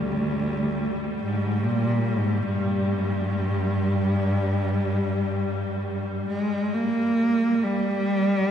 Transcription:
0.00 1.23 D2 medium
0.00 7.60 G3 soft
1.23 1.67 G#2 medium
1.65 2.07 A#2 medium
2.05 2.47 G#2 medium
2.45 6.27 G2 medium
6.29 6.75 G#3 medium
6.74 7.65 A#3 medium
7.61 8.51 G3 soft
7.61 8.51 G3 medium

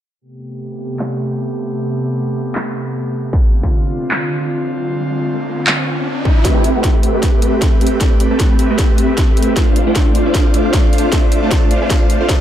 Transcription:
0.21 3.30 C3 medium
0.21 3.30 A3 medium
0.21 3.30 B3 medium
0.21 3.30 G4 medium
0.99 clap loud
2.55 clap loud
3.33 6.42 D3 medium
3.33 6.42 C4 medium
3.33 6.42 F4 medium
3.33 kick loud
3.33 riser medium
3.63 kick medium
4.11 clap loud
5.67 clap loud
6.25 kick loud
6.45 6.73 A3 medium
6.45 9.53 A3 medium
6.45 6.73 C4 medium
6.45 12.41 C4 medium
6.45 6.73 G4 medium
6.45 9.53 G4 medium
6.45 6.73 B4 medium
6.45 9.53 B4 medium
6.45 6.73 E5 loud
6.45 kick medium
6.45 snare soft
6.45 closed hi-hat medium
6.64 closed hi-hat medium
6.75 7.01 A3 medium
6.75 7.01 C4 medium
6.75 7.01 G4 medium
6.75 7.01 B4 medium
6.75 7.01 G5 medium
6.84 kick loud
6.84 snare soft
6.84 closed hi-hat medium
7.03 7.13 A3 medium
7.03 7.13 C4 medium
7.03 7.13 G4 medium
7.03 7.13 B4 medium
7.03 7.13 E5 medium
7.03 closed hi-hat medium
7.14 7.40 A3 medium
7.14 7.40 C4 medium
7.14 7.40 G4 medium
7.14 7.40 B4 medium
7.14 7.40 E5 medium
7.23 kick medium
7.23 snare soft
7.23 closed hi-hat medium
7.42 7.79 A3 medium
7.42 7.79 C4 medium
7.42 7.79 G4 medium
7.42 7.79 B4 medium
7.42 7.79 E5 medium
7.42 closed hi-hat medium
7.62 kick medium
7.62 snare soft
7.62 closed hi-hat medium
7.81 7.99 A3 medium
7.81 7.99 C4 medium
7.81 7.99 G4 medium
7.81 7.99 B4 medium
7.81 7.99 E5 loud
7.81 closed hi-hat soft
7.87 closed hi-hat medium
8.01 8.28 A3 medium
8.01 8.28 C4 medium
8.01 8.28 G4 medium
8.01 8.28 B4 medium
8.01 8.28 D5 medium
8.01 kick medium
8.01 snare medium
8.01 closed hi-hat medium
8.20 closed hi-hat medium
8.31 8.57 A3 medium
8.31 8.57 C4 medium
8.31 8.57 G4 medium
8.31 8.57 B4 medium
8.31 8.57 A5 loud
8.40 kick loud
8.40 snare medium
8.40 closed hi-hat medium
8.59 8.67 A3 loud
8.59 8.67 C4 medium
8.59 8.67 G4 medium
8.59 8.67 B4 medium
8.59 8.67 E5 loud
8.59 closed hi-hat medium
8.70 9.54 A3 medium
8.70 9.54 C4 medium
8.70 9.54 G4 medium
8.70 9.54 B4 medium
8.70 9.54 E5 medium
8.79 kick medium
8.79 snare medium
8.79 closed hi-hat medium
8.98 closed hi-hat medium
9.18 kick medium
9.18 snare medium
9.18 closed hi-hat medium
9.37 closed hi-hat soft
9.43 closed hi-hat medium
9.56 9.84 A3 medium
9.56 9.84 D4 medium
9.56 9.84 F4 medium
9.56 12.41 F4 medium
9.56 9.84 C5 medium
9.56 12.41 D5 medium
9.56 9.84 F5 loud
9.56 kick loud
9.56 snare medium
9.56 closed hi-hat medium
9.76 closed hi-hat medium
9.87 10.13 A3 medium
9.87 10.13 D4 medium
9.87 10.13 F4 medium
9.87 10.13 C5 medium
9.87 10.13 G5 medium
9.95 kick medium
9.95 snare medium
9.95 closed hi-hat medium
10.15 10.24 A3 medium
10.15 10.24 D4 medium
10.15 10.24 F4 medium
10.15 10.24 C5 medium
10.15 10.24 F5 medium
10.15 closed hi-hat medium
10.26 10.52 A3 medium
10.26 10.52 D4 medium
10.26 10.52 F4 medium
10.26 10.52 C5 medium
10.26 10.52 F5 loud
10.34 kick loud
10.34 snare medium
10.34 closed hi-hat medium
10.54 10.91 A3 medium
10.54 10.91 D4 medium
10.54 10.91 F4 medium
10.54 10.91 C5 medium
10.54 10.91 F5 medium
10.54 closed hi-hat medium
10.73 kick medium
10.73 snare medium
10.73 closed hi-hat medium
10.93 11.10 A3 medium
10.93 11.10 D4 medium
10.93 11.10 F4 medium
10.93 11.10 C5 medium
10.93 11.10 F5 loud
10.93 closed hi-hat soft
10.98 closed hi-hat medium
11.12 11.40 A3 medium
11.12 11.40 D4 medium
11.12 11.40 F4 medium
11.12 11.40 C5 medium
11.12 11.40 E5 medium
11.12 kick medium
11.12 snare medium
11.12 closed hi-hat medium
11.32 closed hi-hat medium
11.43 11.69 A3 medium
11.43 11.69 D4 medium
11.43 11.69 F4 medium
11.43 11.69 C5 medium
11.43 11.69 A5 loud
11.51 kick loud
11.51 snare medium
11.51 closed hi-hat medium
11.71 11.79 A3 loud
11.71 11.79 D4 medium
11.71 11.79 F4 medium
11.71 11.79 C5 medium
11.71 11.79 F5 loud
11.71 closed hi-hat medium
11.82 12.18 A3 medium
11.82 12.18 D4 medium
11.82 12.18 F4 medium
11.82 12.18 C5 medium
11.82 12.18 F5 medium
11.90 kick loud
11.90 snare medium
11.90 closed hi-hat medium
12.10 closed hi-hat medium
12.21 12.37 A3 medium
12.21 12.38 D4 medium
12.21 12.38 F4 medium
12.21 12.38 C5 medium
12.21 12.38 F5 loud
12.29 kick medium
12.29 snare medium
12.29 closed hi-hat medium

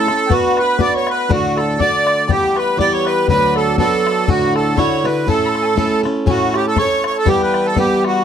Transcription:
0.00 0.33 A4 loud
0.00 0.22 A5 medium
0.07 0.30 C#4 soft
0.07 0.30 E4 soft
0.07 0.30 A4 soft
0.07 bodhran soft
0.26 0.77 B3 medium
0.26 0.32 G5 medium
0.30 0.78 D4 medium
0.30 0.79 F#4 medium
0.30 0.59 F#4 loud
0.30 0.80 B4 medium
0.30 0.59 F#5 medium
0.30 bodhran medium
0.57 0.81 B4 medium
0.57 0.63 C#6 medium
0.57 bodhran medium
0.62 0.79 B5 medium
0.79 1.29 B3 medium
0.79 1.29 D4 medium
0.79 1.30 F#4 medium
0.79 1.30 B4 medium
0.79 0.94 D5 loud
0.79 0.96 D6 medium
0.79 bodhran medium
0.94 1.09 C#5 medium
0.94 1.07 C#6 medium
1.07 1.31 B4 medium
1.07 1.13 C#6 medium
1.07 bodhran medium
1.12 1.32 B5 medium
1.29 1.79 D2 medium
1.29 1.79 A2 medium
1.29 1.78 D3 medium
1.29 1.80 A3 medium
1.29 1.79 D4 medium
1.29 1.58 F#4 medium
1.29 1.80 F#4 medium
1.29 1.59 F#5 medium
1.29 bodhran medium
1.56 1.80 A4 medium
1.56 1.61 B5 medium
1.56 bodhran soft
1.60 1.78 A5 medium
1.79 2.28 D3 medium
1.79 2.30 A3 medium
1.79 2.29 D4 medium
1.79 2.30 F#4 medium
1.79 2.31 D5 loud
1.79 2.29 D6 medium
1.79 bodhran medium
2.07 bodhran medium
2.28 2.76 E3 medium
2.28 2.77 G3 medium
2.28 2.79 B3 medium
2.28 2.58 G4 loud
2.28 2.80 G4 medium
2.28 2.58 G5 medium
2.28 bodhran medium
2.56 2.78 B4 medium
2.56 2.80 B5 medium
2.56 2.61 C#6 medium
2.56 bodhran soft
2.77 3.28 E3 medium
2.77 3.29 G3 medium
2.77 3.29 B3 medium
2.77 3.30 G4 medium
2.77 2.93 D5 loud
2.77 2.94 D6 medium
2.77 bodhran medium
2.93 3.05 C#5 medium
2.93 3.06 C#6 medium
3.05 3.27 B4 medium
3.05 3.12 C#6 medium
3.05 bodhran medium
3.11 3.29 B5 medium
3.28 3.79 D2 medium
3.28 3.79 D3 medium
3.28 3.77 F#3 medium
3.28 3.78 B3 medium
3.28 3.79 D4 medium
3.28 3.80 F#4 medium
3.28 3.54 B4 medium
3.28 3.57 B5 medium
3.28 bodhran medium
3.56 3.76 A4 medium
3.56 3.63 B5 medium
3.56 bodhran soft
3.62 3.78 A5 medium
3.78 4.28 F#3 medium
3.78 4.28 B3 medium
3.78 4.27 D4 medium
3.78 4.29 F#4 medium
3.78 4.29 A4 medium
3.78 4.31 A5 medium
3.78 bodhran medium
4.07 bodhran medium
4.28 4.78 D2 medium
4.28 4.78 A2 medium
4.28 4.75 D3 medium
4.28 4.76 D4 medium
4.28 4.78 E4 medium
4.28 4.54 F#4 medium
4.28 4.78 F#4 medium
4.28 4.34 G#5 medium
4.28 bodhran medium
4.33 4.57 F#5 medium
4.56 4.79 A4 medium
4.56 4.79 A5 medium
4.56 bodhran medium
4.77 5.05 D3 medium
4.77 5.05 D4 medium
4.77 5.04 E4 medium
4.77 5.03 F#4 medium
4.77 5.06 C#5 medium
4.77 5.05 C#6 medium
4.77 bodhran medium
5.04 5.27 D3 soft
5.04 5.27 D4 soft
5.04 5.27 E4 soft
5.04 5.27 F#4 soft
5.04 5.28 B4 medium
5.04 bodhran medium
5.27 5.77 A2 medium
5.27 5.75 A3 medium
5.27 5.76 C#4 medium
5.27 5.77 E4 medium
5.27 6.01 A4 medium
5.27 5.77 A4 medium
5.27 5.47 A5 medium
5.27 bodhran medium
5.46 5.64 A5 medium
5.46 5.50 B5 medium
5.55 bodhran soft
5.63 5.67 G#5 medium
5.63 6.01 A5 medium
5.76 6.04 A3 soft
5.76 6.05 C#4 medium
5.76 6.04 E4 medium
5.76 6.02 A4 medium
5.76 bodhran medium
6.03 6.26 C#4 soft
6.03 6.26 E4 soft
6.03 6.27 A4 soft
6.03 bodhran soft
6.26 6.77 A2 medium
6.26 6.75 A3 medium
6.26 6.76 C#4 medium
6.26 6.77 E4 medium
6.26 6.56 F#4 medium
6.26 6.78 A4 medium
6.26 6.32 G#5 medium
6.26 bodhran medium
6.31 6.57 F#5 medium
6.54 6.66 G4 medium
6.54 6.66 G5 medium
6.54 bodhran medium
6.66 6.78 A4 medium
6.66 6.80 A5 medium
6.76 7.25 A3 medium
6.76 7.26 C#4 medium
6.76 7.26 E4 medium
6.76 7.28 A4 medium
6.76 7.05 C#5 loud
6.76 7.05 C#6 medium
6.76 bodhran medium
7.04 7.17 C#5 medium
7.04 7.16 C#6 medium
7.04 bodhran medium
7.16 7.29 A4 medium
7.16 7.30 A5 medium
7.25 7.74 E3 medium
7.25 7.75 G3 medium
7.25 7.76 B3 medium
7.25 7.77 G4 medium
7.25 7.42 G4 loud
7.25 7.68 G5 medium
7.25 bodhran medium
7.42 7.67 B4 medium
7.54 bodhran medium
7.66 7.78 A4 medium
7.66 7.77 A5 medium
7.75 8.24 E3 medium
7.75 8.24 G3 medium
7.75 8.24 B3 medium
7.75 8.24 G4 medium
7.75 8.06 G5 medium
7.75 bodhran medium
7.79 8.03 G4 medium
8.04 8.24 F#4 medium
8.04 8.24 F#5 medium
8.04 bodhran soft

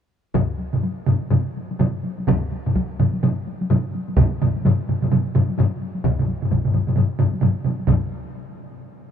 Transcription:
0.34 taiko medium
0.34 taiko low-mid medium
0.34 taiko mid medium
0.34 taiko high medium
0.58 taiko high soft
0.73 taiko low-mid medium
0.73 taiko mid medium
0.73 taiko high soft
0.83 taiko high medium
1.06 taiko low-mid medium
1.06 taiko mid medium
1.06 taiko high soft
1.22 taiko high soft
1.31 taiko low-mid medium
1.31 taiko mid medium
1.31 taiko high medium
1.57 taiko high soft
1.71 taiko high soft
1.79 taiko low-mid medium
1.79 taiko mid medium
1.79 taiko high medium
2.04 taiko high soft
2.18 taiko high soft
2.27 taiko loud
2.27 taiko low-mid medium
2.27 taiko mid medium
2.27 taiko high medium
2.52 taiko high soft
2.67 taiko low-mid medium
2.67 taiko mid medium
2.67 taiko high soft
2.75 taiko medium
2.75 taiko high medium
3.00 taiko low-mid medium
3.00 taiko mid medium
3.00 taiko high soft
3.14 taiko high medium
3.23 taiko low-mid medium
3.23 taiko mid medium
3.23 taiko high medium
3.47 taiko high soft
3.62 taiko high medium
3.70 taiko low-mid medium
3.70 taiko mid medium
3.70 taiko high medium
3.95 taiko high medium
4.08 taiko high soft
4.17 taiko medium
4.17 taiko low-mid medium
4.17 taiko mid medium
4.17 taiko high medium
4.42 taiko low-mid medium
4.42 taiko mid medium
4.42 taiko high medium
4.56 taiko high soft
4.65 taiko low-mid medium
4.65 taiko mid medium
4.65 taiko high medium
4.89 taiko low-mid medium
4.89 taiko mid medium
4.89 taiko high medium
5.02 taiko low-mid medium
5.02 taiko mid medium
5.02 taiko high soft
5.12 taiko low-mid medium
5.12 taiko mid medium
5.12 taiko high medium
5.35 taiko low-mid medium
5.35 taiko mid medium
5.35 taiko high soft
5.49 taiko high soft
5.58 taiko low-mid medium
5.58 taiko mid medium
5.58 taiko high medium
5.81 taiko high soft
5.95 taiko high soft
6.04 taiko medium
6.04 taiko low-mid medium
6.04 taiko mid medium
6.04 taiko high medium
6.19 taiko low-mid medium
6.19 taiko mid medium
6.28 taiko high soft
6.42 taiko low-mid medium
6.42 taiko mid medium
6.51 taiko medium
6.51 taiko low-mid medium
6.51 taiko mid medium
6.51 taiko high medium
6.65 taiko low-mid medium
6.65 taiko mid medium
6.74 taiko low-mid medium
6.74 taiko mid medium
6.74 taiko high soft
6.87 taiko low-mid medium
6.87 taiko mid medium
6.87 taiko high soft
6.96 taiko low-mid medium
6.96 taiko mid medium
6.96 taiko high medium
7.19 taiko low-mid medium
7.19 taiko mid medium
7.19 taiko high soft
7.34 taiko high soft
7.41 taiko low-mid medium
7.41 taiko mid medium
7.41 taiko high medium
7.64 taiko low-mid medium
7.64 taiko mid medium
7.64 taiko high soft
7.80 taiko high soft
7.87 taiko medium
7.87 taiko low-mid medium
7.87 taiko mid medium
7.87 taiko high medium

